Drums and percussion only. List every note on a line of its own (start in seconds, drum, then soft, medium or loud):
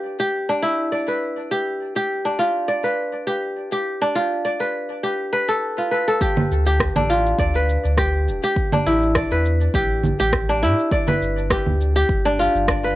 6.21 kick loud
6.21 shaker soft
6.37 low conga medium
6.51 shaker medium
6.67 shaker soft
6.80 kick loud
6.80 cross-stick loud
6.80 shaker soft
6.96 low conga medium
7.10 shaker medium
7.26 shaker soft
7.39 kick loud
7.39 shaker soft
7.69 shaker medium
7.85 shaker soft
7.97 kick medium
7.97 cross-stick medium
7.97 shaker soft
8.28 shaker medium
8.44 shaker soft
8.56 kick loud
8.56 shaker soft
8.72 low conga medium
8.87 shaker medium
9.02 shaker soft
9.15 kick loud
9.15 cross-stick loud
9.15 shaker soft
9.45 shaker medium
9.61 shaker soft
9.74 kick loud
9.74 shaker soft
10.03 low conga medium
10.03 shaker medium
10.20 shaker soft
10.33 kick loud
10.33 cross-stick medium
10.33 shaker soft
10.63 shaker medium
10.79 shaker soft
10.91 kick loud
10.91 shaker soft
11.08 low conga medium
11.22 shaker medium
11.38 shaker soft
11.50 kick loud
11.50 cross-stick loud
11.50 shaker soft
11.66 low conga medium
11.81 shaker medium
11.97 shaker soft
12.09 kick loud
12.09 shaker soft
12.39 shaker medium
12.55 shaker soft
12.68 kick medium
12.68 cross-stick medium
12.68 shaker soft